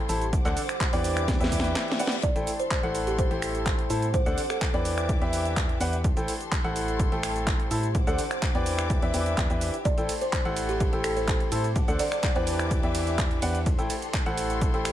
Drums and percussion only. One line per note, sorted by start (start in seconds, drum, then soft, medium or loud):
0.09 open hi-hat loud
0.09 shaker medium
0.22 closed hi-hat medium
0.22 shaker soft
0.33 kick loud
0.33 closed hi-hat medium
0.33 shaker soft
0.45 clap soft
0.45 closed hi-hat soft
0.45 shaker soft
0.57 open hi-hat loud
0.57 shaker medium
0.69 finger snap medium
0.69 closed hi-hat medium
0.69 shaker soft
0.81 kick loud
0.81 clap loud
0.81 closed hi-hat medium
0.81 shaker soft
0.93 open hi-hat medium
0.93 shaker soft
1.04 open hi-hat loud
1.04 shaker medium
1.17 finger snap medium
1.17 closed hi-hat medium
1.17 shaker soft
1.28 kick loud
1.28 snare medium
1.28 closed hi-hat medium
1.28 shaker soft
1.41 snare medium
1.41 closed hi-hat soft
1.41 shaker soft
1.52 kick medium
1.52 open hi-hat loud
1.52 shaker medium
1.60 snare medium
1.64 closed hi-hat medium
1.64 shaker soft
1.76 snare medium
1.76 clap loud
1.76 closed hi-hat medium
1.76 shaker soft
1.88 snare loud
1.88 closed hi-hat soft
1.99 open hi-hat loud
1.99 shaker medium
2.07 snare loud
2.12 closed hi-hat medium
2.12 shaker soft
2.23 kick loud
2.23 closed hi-hat medium
2.23 shaker soft
2.36 closed hi-hat soft
2.36 shaker soft
2.47 open hi-hat loud
2.47 shaker medium
2.60 closed hi-hat medium
2.60 shaker soft
2.71 kick loud
2.71 clap loud
2.71 closed hi-hat medium
2.71 shaker soft
2.83 closed hi-hat soft
2.95 open hi-hat loud
2.95 shaker medium
3.07 closed hi-hat medium
3.07 shaker soft
3.19 kick loud
3.19 closed hi-hat medium
3.19 shaker soft
3.31 closed hi-hat soft
3.42 finger snap medium
3.42 open hi-hat loud
3.42 shaker medium
3.55 closed hi-hat medium
3.55 shaker soft
3.66 kick loud
3.66 clap loud
3.66 closed hi-hat medium
3.66 shaker soft
3.79 closed hi-hat soft
3.90 open hi-hat loud
3.90 shaker medium
4.02 closed hi-hat medium
4.02 shaker soft
4.14 kick loud
4.14 closed hi-hat medium
4.14 shaker soft
4.26 closed hi-hat soft
4.26 shaker soft
4.38 open hi-hat loud
4.38 shaker medium
4.50 finger snap medium
4.50 closed hi-hat medium
4.50 shaker soft
4.61 kick loud
4.61 clap loud
4.61 closed hi-hat medium
4.61 shaker soft
4.74 closed hi-hat soft
4.85 open hi-hat loud
4.85 shaker medium
4.98 finger snap medium
4.98 closed hi-hat medium
4.98 shaker soft
5.09 kick loud
5.09 closed hi-hat medium
5.09 shaker soft
5.22 closed hi-hat soft
5.33 open hi-hat loud
5.33 shaker medium
5.45 closed hi-hat medium
5.45 shaker soft
5.57 kick loud
5.57 clap loud
5.57 closed hi-hat medium
5.57 shaker soft
5.69 closed hi-hat soft
5.81 open hi-hat loud
5.81 shaker medium
5.93 closed hi-hat medium
5.93 shaker soft
6.04 kick loud
6.04 closed hi-hat soft
6.04 shaker soft
6.17 closed hi-hat soft
6.17 shaker soft
6.28 open hi-hat loud
6.28 shaker medium
6.41 closed hi-hat medium
6.41 shaker soft
6.52 kick loud
6.52 clap loud
6.52 closed hi-hat medium
6.52 shaker soft
6.64 closed hi-hat soft
6.76 open hi-hat loud
6.76 shaker medium
6.88 closed hi-hat medium
6.88 shaker soft
7.00 kick loud
7.00 closed hi-hat medium
7.00 shaker soft
7.12 closed hi-hat soft
7.23 finger snap medium
7.23 open hi-hat loud
7.23 shaker medium
7.36 closed hi-hat medium
7.36 shaker soft
7.47 kick loud
7.47 clap loud
7.47 closed hi-hat medium
7.47 shaker soft
7.60 closed hi-hat soft
7.71 open hi-hat loud
7.71 shaker medium
7.83 closed hi-hat medium
7.83 shaker soft
7.95 kick loud
7.95 closed hi-hat soft
7.95 shaker soft
8.07 closed hi-hat soft
8.07 shaker soft
8.19 open hi-hat loud
8.19 shaker medium
8.31 finger snap medium
8.31 closed hi-hat medium
8.31 shaker soft
8.42 kick loud
8.42 clap loud
8.42 closed hi-hat medium
8.42 shaker soft
8.55 closed hi-hat soft
8.66 open hi-hat loud
8.66 shaker medium
8.79 finger snap medium
8.79 closed hi-hat medium
8.79 shaker soft
8.90 kick loud
8.90 closed hi-hat medium
8.90 shaker soft
9.02 closed hi-hat soft
9.14 open hi-hat loud
9.14 shaker medium
9.26 closed hi-hat medium
9.26 shaker soft
9.38 kick loud
9.38 clap loud
9.38 closed hi-hat medium
9.38 shaker soft
9.50 closed hi-hat soft
9.50 shaker soft
9.61 open hi-hat loud
9.61 shaker medium
9.74 closed hi-hat medium
9.74 shaker soft
9.85 kick loud
9.85 closed hi-hat medium
9.85 shaker soft
9.98 closed hi-hat soft
9.98 shaker soft
10.09 open hi-hat loud
10.09 ride medium
10.09 shaker medium
10.21 closed hi-hat medium
10.21 shaker soft
10.33 kick loud
10.33 clap loud
10.33 closed hi-hat medium
10.33 shaker soft
10.45 closed hi-hat soft
10.57 open hi-hat loud
10.57 ride medium
10.57 shaker medium
10.69 closed hi-hat medium
10.69 shaker soft
10.80 kick loud
10.80 closed hi-hat medium
10.80 shaker soft
10.93 closed hi-hat soft
11.04 finger snap medium
11.04 open hi-hat loud
11.04 ride medium
11.04 shaker medium
11.17 closed hi-hat medium
11.17 shaker soft
11.28 kick loud
11.28 clap loud
11.28 closed hi-hat medium
11.28 shaker soft
11.40 closed hi-hat soft
11.52 open hi-hat loud
11.52 ride medium
11.52 shaker medium
11.64 closed hi-hat soft
11.64 shaker soft
11.76 kick loud
11.76 closed hi-hat medium
11.76 shaker soft
11.88 closed hi-hat soft
11.88 shaker soft
11.99 open hi-hat loud
11.99 ride medium
11.99 shaker medium
12.12 finger snap medium
12.12 closed hi-hat medium
12.12 shaker soft
12.23 kick loud
12.23 clap loud
12.23 closed hi-hat medium
12.23 shaker medium
12.36 closed hi-hat soft
12.47 open hi-hat loud
12.47 ride medium
12.47 shaker medium
12.59 finger snap medium
12.59 closed hi-hat medium
12.59 shaker soft
12.71 kick loud
12.71 closed hi-hat medium
12.71 shaker soft
12.83 closed hi-hat soft
12.95 open hi-hat loud
12.95 ride medium
12.95 shaker medium
13.07 closed hi-hat medium
13.07 shaker soft
13.18 kick loud
13.18 clap loud
13.18 closed hi-hat medium
13.18 shaker soft
13.31 closed hi-hat soft
13.42 open hi-hat loud
13.42 ride medium
13.42 shaker medium
13.55 closed hi-hat medium
13.55 shaker soft
13.66 kick loud
13.66 closed hi-hat medium
13.66 shaker soft
13.79 closed hi-hat soft
13.79 shaker soft
13.90 open hi-hat loud
13.90 ride medium
13.90 shaker medium
14.02 closed hi-hat medium
14.02 shaker soft
14.14 kick loud
14.14 clap loud
14.14 closed hi-hat medium
14.14 shaker soft
14.26 closed hi-hat soft
14.38 open hi-hat loud
14.38 ride medium
14.38 shaker medium
14.50 closed hi-hat medium
14.50 shaker soft
14.61 kick loud
14.61 closed hi-hat medium
14.61 shaker soft
14.74 closed hi-hat soft
14.85 finger snap medium
14.85 open hi-hat loud
14.85 ride medium
14.85 shaker medium